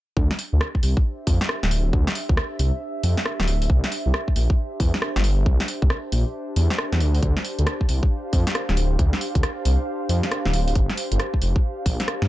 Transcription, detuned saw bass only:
0.17 0.29 D2 loud
0.53 0.60 D2 medium
0.83 0.95 C2 medium
1.27 1.39 F2 loud
1.63 1.91 D1 medium
1.93 2.05 D2 loud
2.29 2.36 D2 medium
2.59 2.71 C2 medium
3.04 3.15 F2 loud
3.40 3.68 D1 medium
3.70 3.82 C2 loud
4.06 4.13 C2 medium
4.36 4.48 A#1 medium
4.80 4.92 E2 loud
5.16 5.44 G1 medium
5.46 5.58 C2 loud
5.82 5.89 C2 medium
6.12 6.24 A#1 medium
6.56 6.68 E2 loud
6.92 7.02 E2 loud
7.00 7.20 D2 loud
7.23 7.34 D2 loud
7.59 7.65 D2 medium
7.89 8.01 C2 medium
8.33 8.45 F2 loud
8.69 8.97 D1 medium
8.99 9.11 D2 loud
9.35 9.42 D2 medium
9.65 9.77 C2 medium
10.09 10.21 F2 loud
10.45 10.74 D1 medium
10.76 10.87 G1 loud
11.12 11.18 G1 medium
11.42 11.54 F1 medium
11.86 11.98 A#1 loud
12.22 12.28 G2 medium

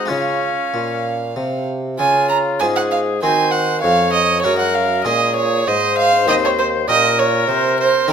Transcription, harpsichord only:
0.06 0.69 G#3 soft
0.06 1.94 C#4 soft
0.06 1.94 F4 soft
0.10 0.48 C#3 soft
0.74 1.32 A#2 soft
1.36 1.95 C3 soft
2.00 2.57 C#3 medium
2.61 3.18 G#2 medium
2.61 3.05 G#3 soft
2.61 3.05 C#4 soft
2.61 3.06 F4 soft
3.23 3.80 D#3 medium
3.23 3.80 C4 soft
3.23 3.80 F#4 soft
3.84 4.41 F2 medium
4.44 5.02 F#2 medium
4.44 4.88 G#3 soft
4.44 4.89 C#4 soft
4.44 4.89 G#4 soft
5.05 5.62 A#2 medium
5.05 5.49 G#3 soft
5.05 5.50 C#4 soft
5.05 5.50 G#4 soft
5.67 6.24 G#2 soft
6.28 6.84 D#2 medium
6.28 6.72 G#3 soft
6.28 6.72 C4 soft
6.28 6.72 D#4 soft
6.89 7.45 A#2 medium
6.89 7.45 C#4 soft
6.89 7.45 G4 soft
7.49 8.04 C3 medium
8.08 8.13 D#3 medium
8.08 8.13 C4 medium
8.08 8.13 D#4 soft
8.08 8.13 G#4 soft

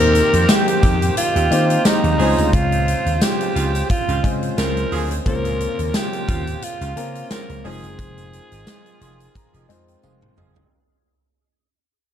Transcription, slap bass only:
0.00 0.20 D#2 loud
0.33 0.45 F2 loud
0.83 1.09 F2 medium
1.36 1.47 D#2 loud
1.51 1.77 D#3 loud
2.04 2.15 D#2 medium
2.19 2.33 C#2 loud
2.38 2.49 D2 medium
2.53 2.93 C#2 loud
3.06 3.18 D#2 medium
3.56 3.81 C#2 medium
4.08 4.20 C#2 loud
4.24 4.49 C#3 loud
4.58 4.83 C#2 medium
4.92 5.17 D2 medium
5.26 5.66 C#2 loud
5.79 5.90 D#2 medium
6.29 6.54 D#2 loud
6.81 6.93 C#2 medium
6.96 7.22 C#3 loud
7.49 7.61 C#2 medium
7.65 7.79 F1 loud
7.83 7.95 F#1 medium
7.99 8.38 F1 loud
8.52 8.63 G#1 medium
9.01 9.27 F1 medium
9.54 9.65 F1 loud
9.69 9.95 F2 medium
10.03 10.29 F1 medium
10.37 10.63 F#1 medium

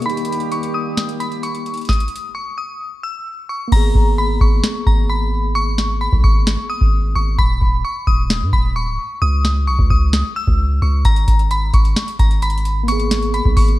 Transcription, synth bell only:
0.06 0.49 B5 loud
0.52 0.69 C#6 medium
0.74 1.17 D#6 medium
1.20 1.37 B5 medium
1.43 1.86 C#6 medium
1.89 2.32 D#6 loud
2.35 2.52 C#6 medium
2.58 3.01 D#6 medium
3.03 3.46 E6 medium
3.49 3.67 C#6 medium
3.72 4.15 A#5 loud
4.18 4.35 B5 medium
4.41 4.84 C#6 medium
4.87 5.04 A#5 medium
5.10 5.53 B5 medium
5.55 5.98 C#6 loud
6.01 6.18 B5 medium
6.24 6.67 C#6 medium
6.70 7.13 D#6 medium
7.15 7.33 C#6 medium
7.39 7.82 B5 loud
7.85 8.02 C#6 medium
8.07 8.50 D#6 medium
8.53 8.70 B5 medium
8.76 9.19 C#6 medium
9.22 9.65 D#6 loud
9.67 9.85 C#6 medium
9.90 10.33 D#6 medium
10.36 10.79 E6 medium
10.82 10.99 C#6 medium
11.05 11.48 A#5 loud
11.51 11.68 B5 medium
11.74 12.17 C#6 medium
12.20 12.37 A#5 medium
12.43 12.85 B5 medium
12.88 13.31 C#6 loud
13.34 13.51 B5 medium
13.57 13.79 C#6 medium

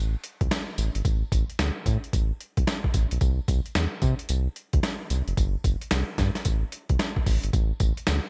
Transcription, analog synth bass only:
0.00 0.16 A1 loud
0.42 0.48 C2 medium
0.78 0.90 A1 loud
0.95 1.02 G#1 medium
1.05 1.24 A1 loud
1.32 1.44 A1 loud
1.59 1.71 D2 medium
1.86 1.98 A2 loud
2.14 2.32 A1 loud
2.58 2.64 C2 medium
2.94 3.06 A1 medium
3.12 3.19 B1 loud
3.21 3.40 C2 loud
3.49 3.61 C2 loud
3.75 3.87 E2 medium
4.02 4.14 C3 loud
4.30 4.48 C2 loud
4.74 4.81 D2 medium
5.11 5.22 C2 loud
5.28 5.34 F#1 medium
5.38 5.57 G1 loud
5.65 5.77 G1 medium
5.92 6.04 C2 loud
6.18 6.30 G2 loud
6.46 6.64 A1 medium
6.90 6.97 C2 medium
7.27 7.39 A1 loud
7.44 7.51 G#1 medium
7.54 7.73 A1 loud
7.81 7.93 A1 loud
8.08 8.20 D2 loud

